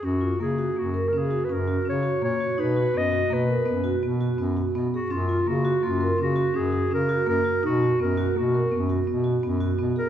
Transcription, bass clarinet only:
\new Staff \with { instrumentName = "Bass clarinet" } { \clef bass \time 7/4 \key b \lydian \tempo 4 = 166 fis,4 cis4 fis,4 cis4 fis,4 cis4 ais,8 r8 | b,4 fis,4 b,4 fis,4 b,4 fis,4 b,8 r8 | fis,4 cis4 fis,4 cis4 fis,4 cis4 fis,8 r8 | b,4 fis,4 b,4 fis,4 b,4 fis,4 b,8 r8 | }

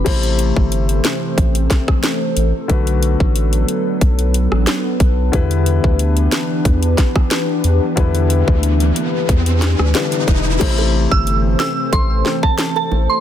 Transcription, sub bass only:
\new Staff \with { instrumentName = "Sub bass" } { \clef bass \time 4/4 \key a \dorian \tempo 4 = 91 a,,8. g,,8. r8 a,,8 r4 a,,16 r16 | b,,8. a,,8. r8 b,,8. a,,16 r8 b,,8 | e,8. d,8. r8 e,8 r4 e,16 r16 | e,8. d,8. r8 e,8. d,16 r8 e,,8 |
a,,8. g,,8. r8 a,,8 r4 a,,16 r16 | }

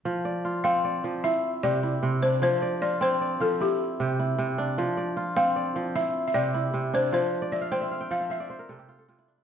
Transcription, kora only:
<<
  \new Staff \with { instrumentName = "Kora" } { \time 12/8 \key f \major \tempo 4. = 102 r8 d''8 f'4 d''4 e'4 g'8 e'4 d'8~ | d'8 d''8 f'4 d''4 e'4 g'8 e'4 d'8~ | d'8 d''8 f'4 d''4 e'4 g'8 e'4 d'8~ | d'8 r16 d''16 e''16 f''16 g''16 e''16 f''16 g''16 a''16 f''16 e''16 d''16 c''16 bes'16 a'16 g'16 f'16 a'16 f'16 e'16 d'16 e'16 | }
  \new Staff \with { instrumentName = "Kora" } { \clef bass \time 12/8 \key f \major f4 r8 c'4 f8 r4 c4 c4 | f4 r8 c'4 f8 r4 c4 c4 | f4 r8 c'4 f8 r4 c4 c4 | f4 r8 c'4 f8 r4 c4 c4 | }
>>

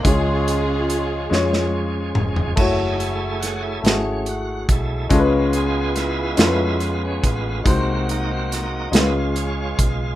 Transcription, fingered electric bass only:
\new Staff \with { instrumentName = "Fingered electric bass" } { \clef bass \time 6/8 \key fis \minor \tempo 4. = 47 cis,4. eis,4 eis,,8 | fis,,4. gis,,4 b,,8 | cis,4. eis,4 a,,8 | bis,,4. cis,4 b,,8 | }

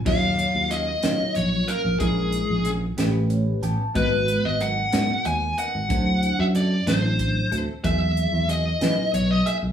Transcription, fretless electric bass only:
\new Staff \with { instrumentName = "Fretless electric bass" } { \clef bass \time 6/8 \key ees \minor \tempo 4. = 62 ees,8. ees,8. ees16 r16 bes,,8 r16 bes,,16 | bes,,8. bes,,8. a,,4 a,,16 r16 | aes,,8. aes,,8. aes,16 r16 ees,8 r16 aes,,16 | d,8. fis,8. a,,4 d,16 r16 |
e,8. e,8. e16 r16 b,,8 r16 b,,16 | }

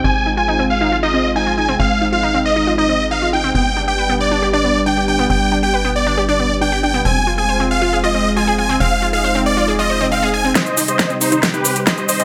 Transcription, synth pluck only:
\new Staff \with { instrumentName = "Synth pluck" } { \time 4/4 \key c \minor \tempo 4 = 137 c'16 r16 ees'16 f'16 ees'16 c'16 r16 ees'16 f'16 ees'16 c'16 r16 ees'16 f'16 ees'16 c'16 | c'16 r16 ees'16 f'16 ees'16 c'16 r16 ees'16 f'16 ees'16 c'16 r16 ees'16 f'16 ees'16 c'16 | b16 r16 d'16 g'16 b'16 b16 r16 d'16 g'16 d'16 b16 r16 d'16 g'16 d'16 b16 | b16 r16 d'16 g'16 b'16 b16 r16 d'16 g'16 d'16 b16 r16 d'16 g'16 d'16 b16 |
c'16 r16 f'16 aes'16 c''16 c'16 r16 f'16 aes'16 f'16 c'16 r16 f'16 aes'16 f'16 c'16 | c'16 r16 f'16 aes'16 c''16 c'16 r16 f'16 aes'16 f'16 c''16 c'16 c'16 aes'16 aes''16 c'16 | r8 ees'16 g'16 c''16 c'16 r16 ees'16 g'16 ees'16 c'16 r16 ees'16 g'16 ees'16 c'16 | }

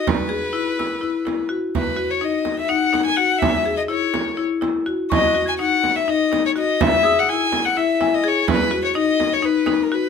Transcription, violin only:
\new Staff \with { instrumentName = "Violin" } { \time 7/8 \key e \lydian \tempo 4 = 125 b'2. r8 | b'8. cis''16 dis''8. e''16 fis''8. gis''16 fis''8 | e''8. dis''16 cis''4 r4. | dis''8. gis''16 fis''8. e''16 dis''8. cis''16 dis''8 |
e''8. fis''16 gis''8. fis''16 e''8. dis''16 cis''8 | b'8. cis''16 dis''8. cis''16 b'8. ais'16 b'8 | }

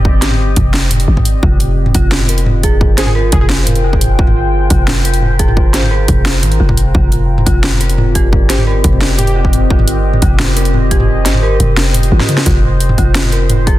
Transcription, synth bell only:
\new Staff \with { instrumentName = "Synth bell" } { \time 4/4 \key f \dorian \tempo 4 = 174 r1 | f'8 r4 f'4 bes'4 aes'8~ | aes'8 c''8 bes'2 f'8 r8 | f'8 r4 f'4 bes'4 aes'8~ |
aes'8 c''8 bes'2 f'8 r8 | f'8 r4 f'4 bes'4 g'8~ | g'8 c''8 bes'2 f'8 r8 | f'8 r4 f'4 bes'4 g'8~ |
g'8 c''8 bes'2 f'8 r8 | f'8 r4 f'4 bes'4 aes'8 | }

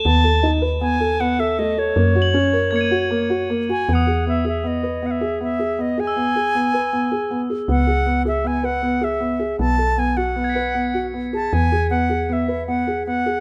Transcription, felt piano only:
\new Staff \with { instrumentName = "Felt piano" } { \time 5/4 \key e \major \tempo 4 = 157 b8 a'8 dis'8 b'8 b8 a'8 b8 a'8 a8 a'8 | ais8 fis'8 cis'8 ais'8 ais8 fis'8 ais8 fis'8 ais8 fis'8 | b8 gis'8 b8 gis'8 b8 b'8 b8 gis'8 b8 gis'8 | b8 gis'8 b8 gis'8 b8 b'8 b8 gis'8 b8 gis'8 |
b8 gis'8 b8 gis'8 b8 b'8 b8 gis'8 b8 gis'8 | b8 a'8 b8 fis'8 b8 b'8 b8 fis'8 b8 gis'8 | b8 gis'8 b8 gis'8 b8 b'8 b8 gis'8 b8 gis'8 | }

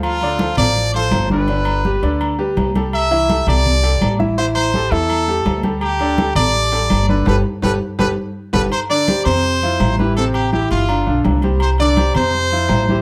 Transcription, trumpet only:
\new Staff \with { instrumentName = "Trumpet" } { \time 4/4 \key c \major \tempo 4 = 166 f'4. d''4 c''4 b'8~ | b'2~ b'8 r4. | e''4. d''2 r8 | c''8 c''4 a'2 r8 |
g'4. d''2 b'8 | b'8 r8 b'8 r8 b'8 r4 b'8 | c''8 d''4 c''2 b'8 | a'8 g'8 g'8 f'4. r4 |
c''8 d''4 c''2~ c''8 | }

